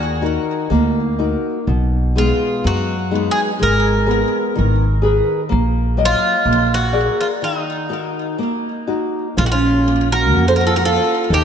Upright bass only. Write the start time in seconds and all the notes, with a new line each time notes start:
Already playing: D#2
0.71 D2
1.67 B1
2.65 F#2
3.62 G#1
4.59 G#1
5.52 A#1
6.46 A#1
9.37 A#1
10.35 F2
11.30 D#2